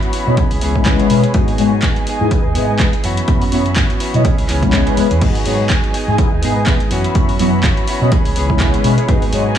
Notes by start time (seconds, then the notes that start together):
Already playing: E3 B3 C#4 F#4 E5 B5
0.03 closed hi-hat
0.12 E3 B3 C#4 F#4, open hi-hat
0.26 B2 F#3 B3 C#4 E4 F#4 D#5
0.37 E3 B3 C#4 E4 G#4 C#5, kick, closed hi-hat
0.50 C#2 B3 C#4 G#4, open hi-hat
0.61 C#2 E3 B3 C#4 G#4, open hi-hat
0.75 G#3 B3 C#4 E4 B4, kick
0.85 E3 G#3 B3 C#4 E4 G#4 B4, kick, clap, closed hi-hat
0.99 B3 C#4 G#4, closed hi-hat
1.10 B2 G#3 B3 C#4 E4 B4, open hi-hat
1.23 B3 C#4 G#4, closed hi-hat
1.34 G#2 F#3 G#3 B3 D#4 F#4 G#4 B4 G#5, kick, closed hi-hat
1.48 open hi-hat
1.58 G#2 F#3 G#3 B3 D#4 F#4 G#4 C#5, open hi-hat
1.82 F#3 B3 D#4 G#4, kick, clap, closed hi-hat
1.96 closed hi-hat
2.06 B3 D#4 G#4 D#5, open hi-hat
2.19 G#2 G#3 B3 D#4 E4 G#4
2.31 G#3 B3 D#4 E4 B4, muted fingered electric bass stroke, kick, closed hi-hat
2.44 D#2 D#4 G#4
2.54 G#2 G#3 B3 D#4 E4 G#4 B4, open hi-hat
2.78 G#3 B3 D#4 E4 G#4 B4, kick, clap, closed hi-hat
2.92 D#4 G#4, closed hi-hat
3.03 F#2 E3 B3 C#4 F#4 E5 B5, open hi-hat
3.17 closed hi-hat
3.28 F#2 F#3 B3 C#4 E4 C#5, kick, closed hi-hat
3.42 open hi-hat
3.51 F#2 E3 F#3 B3 C#4 E4 F#4 B4, open hi-hat
3.66 closed hi-hat
3.75 E3 B3 C#4 F#4, kick, clap, closed hi-hat
3.90 closed hi-hat
3.99 E3 B3 C#4 F#4, open hi-hat
4.13 B2 F#3 B3 C#4 E4 F#4 D#5, closed hi-hat
4.24 E3 B3 C#4 E4 G#4 C#5 B5, kick, closed hi-hat
4.37 C#2 B3 C#4 G#4, open hi-hat
4.48 C#2 E3 B3 C#4 G#4, clap, open hi-hat
4.62 G#3 B3 C#4 E4 B4, kick, closed hi-hat
4.72 E3 G#3 B3 C#4 E4 G#4 B4, kick, clap, closed hi-hat
4.86 B3 C#4 G#4, closed hi-hat
4.97 G#3 B3 C#4 E4 B4, muted fingered electric bass stroke, open hi-hat
5.10 E2 B3 C#4 G#4, closed hi-hat
5.21 G#2 F#3 G#3 B3 D#4 F#4 G#4 B4 G#5, kick, closed hi-hat, crash
5.35 open hi-hat
5.45 G#2 F#3 G#3 B3 D#4 F#4 G#4 C#5, open hi-hat
5.69 F#3 B3 D#4 G#4, kick, clap, closed hi-hat
5.84 closed hi-hat
5.93 B3 D#4 G#4 D#5, open hi-hat
6.07 G#2 G#3 B3 D#4 E4 G#4
6.18 G#3 B3 D#4 E4 B4, muted fingered electric bass stroke, kick, closed hi-hat
6.31 D#2 D#4 G#4
6.42 G#2 G#3 B3 D#4 E4 G#4 B4, open hi-hat
6.66 G#3 B3 D#4 E4 B4, kick, clap, closed hi-hat
6.79 D#4 G#4, closed hi-hat
6.90 F#2 E3 B3 C#4 F#4 E5 B5, open hi-hat
7.04 closed hi-hat
7.15 F#2 F#3 B3 C#4 E4 C#5, kick, closed hi-hat
7.29 open hi-hat
7.38 F#2 E3 F#3 B3 C#4 E4 F#4 B4, open hi-hat
7.63 E3 B3 C#4 F#4, kick, clap, closed hi-hat
7.77 closed hi-hat
7.87 E3 B3 C#4 F#4, open hi-hat
8.00 B2 F#3 B3 C#4 E4 F#4 D#5
8.11 E3 B3 C#4 E4 G#4 C#5, kick, closed hi-hat
8.25 C#2 B3 C#4 G#4, open hi-hat
8.35 C#2 E3 B3 C#4 G#4, open hi-hat
8.49 G#3 B3 C#4 E4 B4, kick
8.60 E3 G#3 B3 C#4 E4 G#4 B4, kick, clap, closed hi-hat
8.73 B3 C#4 G#4, closed hi-hat
8.84 B2 G#3 B3 C#4 E4 B4, open hi-hat
8.97 B3 C#4 G#4, closed hi-hat
9.08 G#2 F#3 G#3 B3 D#4 F#4 G#4 B4 G#5, kick, closed hi-hat
9.22 open hi-hat
9.32 G#2 F#3 G#3 B3 D#4 F#4 G#4 C#5, open hi-hat